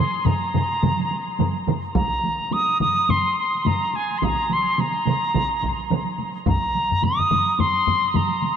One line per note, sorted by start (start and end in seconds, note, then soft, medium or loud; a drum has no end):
0.00 0.27 C6 medium
0.14 taiko high soft
0.25 1.68 A#5 medium
0.25 taiko low-mid loud
0.25 taiko mid medium
0.25 taiko high medium
0.42 taiko high soft
0.54 taiko low-mid loud
0.54 taiko mid loud
0.54 taiko high medium
0.71 taiko high soft
0.83 taiko low-mid medium
0.83 taiko mid medium
0.83 taiko high medium
0.99 taiko high soft
1.11 taiko high medium
1.28 taiko high soft
1.39 taiko low-mid medium
1.39 taiko mid loud
1.39 taiko high medium
1.56 taiko high soft
1.68 taiko low-mid loud
1.68 taiko mid medium
1.68 taiko high soft
1.85 taiko high soft
1.95 2.54 A#5 medium
1.95 taiko loud
1.95 taiko high medium
2.13 taiko high soft
2.24 taiko high medium
2.40 taiko high soft
2.51 2.80 D#6 loud
2.51 taiko high medium
2.68 taiko high soft
2.80 3.11 D#6 loud
2.80 taiko low-mid loud
2.80 taiko high medium
2.97 taiko high soft
3.09 3.38 C6 loud
3.09 taiko low-mid loud
3.09 taiko high medium
3.39 3.68 C6 medium
3.55 taiko high soft
3.65 3.97 A#5 medium
3.65 taiko low-mid medium
3.65 taiko high medium
3.82 taiko high soft
3.93 4.20 G#5 medium
3.93 taiko high soft
4.11 taiko high soft
4.18 4.26 C6 medium
4.18 taiko high medium
4.23 4.55 A#5 medium
4.23 taiko medium
4.39 taiko high soft
4.50 4.82 C6 medium
4.50 taiko high medium
4.67 taiko high soft
4.78 6.20 A#5 medium
4.78 taiko high medium
4.95 taiko high soft
5.06 taiko mid loud
5.06 taiko high medium
5.24 taiko high soft
5.34 taiko medium
5.34 taiko mid loud
5.34 taiko high medium
5.62 taiko medium
5.62 taiko high soft
5.79 taiko high soft
5.90 taiko mid loud
5.90 taiko high medium
6.07 taiko high soft
6.18 taiko high soft
6.35 taiko high soft
6.46 7.06 A#5 medium
6.46 taiko medium
6.46 taiko low-mid loud
6.46 taiko high medium
6.64 taiko high soft
6.75 taiko high soft
6.92 taiko low-mid medium
6.92 taiko high soft
7.03 7.62 D#6 loud
7.03 taiko low-mid medium
7.03 taiko high medium
7.20 taiko low-mid medium
7.20 taiko high soft
7.31 taiko low-mid loud
7.31 taiko high medium
7.59 8.17 C6 medium
7.59 taiko low-mid loud
7.59 taiko high medium
7.87 taiko low-mid medium
7.87 taiko high medium
8.04 taiko high soft
8.14 8.57 A#5 medium
8.14 taiko low-mid loud
8.14 taiko high medium
8.31 taiko high soft
8.42 taiko high medium